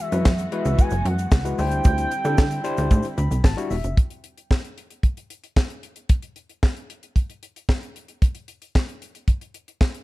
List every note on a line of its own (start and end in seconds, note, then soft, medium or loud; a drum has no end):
0.00 1.56 E3 medium
0.00 1.56 G#3 medium
0.00 1.56 B3 medium
0.00 1.56 F#4 medium
0.00 0.49 E5 medium
0.12 0.23 F#2 medium
0.12 0.30 G#3 medium
0.12 0.30 E4 medium
0.12 0.30 F#4 medium
0.12 0.30 B4 medium
0.12 closed hi-hat medium
0.12 shaker medium
0.25 0.48 F#2 medium
0.25 kick loud
0.25 snare loud
0.25 clap medium
0.25 shaker medium
0.38 closed hi-hat medium
0.38 shaker medium
0.52 0.93 G#3 medium
0.52 0.93 E4 medium
0.52 0.94 F#4 medium
0.52 0.94 B4 medium
0.52 0.82 E5 loud
0.52 closed hi-hat medium
0.65 0.76 C#2 loud
0.65 closed hi-hat medium
0.65 shaker medium
0.79 1.08 G#5 loud
0.79 kick loud
0.79 closed hi-hat medium
0.79 shaker medium
0.90 1.03 F#1 medium
0.90 closed hi-hat medium
0.90 shaker medium
1.05 1.27 F#2 loud
1.05 1.59 F#5 loud
1.05 closed hi-hat medium
1.19 closed hi-hat medium
1.19 shaker medium
1.31 1.54 C#2 medium
1.31 kick loud
1.31 snare loud
1.31 clap medium
1.31 shaker medium
1.45 1.58 G#3 medium
1.45 1.57 E4 medium
1.45 1.58 F#4 medium
1.45 1.59 B4 medium
1.45 closed hi-hat medium
1.45 shaker medium
1.58 1.81 D2 loud
1.58 3.95 D3 medium
1.58 2.11 G3 medium
1.58 3.95 G3 medium
1.58 3.95 C4 medium
1.58 2.11 D4 medium
1.58 3.95 E4 medium
1.58 2.11 E4 medium
1.58 2.12 C5 medium
1.58 3.41 G5 loud
1.58 open hi-hat medium
1.58 shaker medium
1.71 closed hi-hat medium
1.71 shaker soft
1.84 2.07 D2 loud
1.84 kick loud
1.84 closed hi-hat loud
1.84 shaker loud
1.98 closed hi-hat medium
1.98 shaker medium
2.11 closed hi-hat medium
2.11 shaker medium
2.24 2.36 D3 medium
2.24 2.42 G3 medium
2.24 2.42 D4 medium
2.24 2.42 E4 medium
2.24 2.43 A4 medium
2.24 closed hi-hat medium
2.24 shaker medium
2.38 2.60 D3 loud
2.38 kick loud
2.38 snare loud
2.38 clap medium
2.38 shaker medium
2.50 closed hi-hat soft
2.50 shaker medium
2.64 3.05 G3 loud
2.64 3.06 D4 medium
2.64 3.06 E4 medium
2.64 3.06 C5 loud
2.64 closed hi-hat medium
2.64 shaker medium
2.77 2.89 D2 loud
2.77 closed hi-hat medium
2.77 shaker medium
2.91 3.02 A2 loud
2.91 kick loud
2.91 closed hi-hat medium
2.91 shaker medium
3.03 closed hi-hat medium
3.03 shaker medium
3.18 3.29 D2 loud
3.18 3.42 B5 medium
3.18 closed hi-hat medium
3.18 shaker medium
3.31 3.42 C2 medium
3.31 closed hi-hat medium
3.31 shaker medium
3.44 3.55 A1 medium
3.44 3.69 A5 medium
3.44 kick loud
3.44 snare loud
3.44 clap medium
3.44 shaker medium
3.57 3.75 G3 medium
3.57 3.75 D4 medium
3.57 3.75 E4 medium
3.57 3.75 F#4 loud
3.57 closed hi-hat medium
3.57 shaker medium
3.71 3.82 E1 medium
3.71 3.95 E5 medium
3.71 open hi-hat medium
3.71 shaker medium
3.84 3.95 F#1 medium
3.84 closed hi-hat medium
3.84 shaker soft
3.97 kick loud
3.97 closed hi-hat loud
4.10 closed hi-hat medium
4.24 closed hi-hat medium
4.38 closed hi-hat soft
4.51 kick loud
4.51 snare loud
4.51 clap medium
4.64 closed hi-hat soft
4.78 closed hi-hat medium
4.91 closed hi-hat soft
5.03 kick medium
5.03 closed hi-hat medium
5.17 closed hi-hat medium
5.30 closed hi-hat medium
5.44 closed hi-hat medium
5.56 kick loud
5.56 snare loud
5.56 clap medium
5.70 closed hi-hat medium
5.83 closed hi-hat medium
5.96 closed hi-hat medium
6.09 kick loud
6.09 closed hi-hat loud
6.22 closed hi-hat medium
6.36 closed hi-hat medium
6.49 closed hi-hat soft
6.63 kick loud
6.63 snare loud
6.63 clap medium
6.77 closed hi-hat soft
6.90 closed hi-hat medium
7.03 closed hi-hat medium
7.16 kick medium
7.16 closed hi-hat medium
7.30 closed hi-hat medium
7.43 closed hi-hat medium
7.56 closed hi-hat medium
7.69 kick loud
7.69 snare loud
7.69 clap medium
7.83 closed hi-hat soft
7.96 closed hi-hat medium
8.08 closed hi-hat medium
8.22 kick loud
8.22 closed hi-hat loud
8.35 closed hi-hat medium
8.48 closed hi-hat medium
8.62 closed hi-hat soft
8.75 kick loud
8.75 snare loud
8.75 clap medium
8.89 closed hi-hat soft
9.02 closed hi-hat medium
9.15 closed hi-hat soft
9.28 kick medium
9.28 closed hi-hat medium
9.41 closed hi-hat medium
9.54 closed hi-hat medium
9.68 closed hi-hat soft
9.81 kick loud
9.81 snare loud
9.81 clap medium
9.94 closed hi-hat medium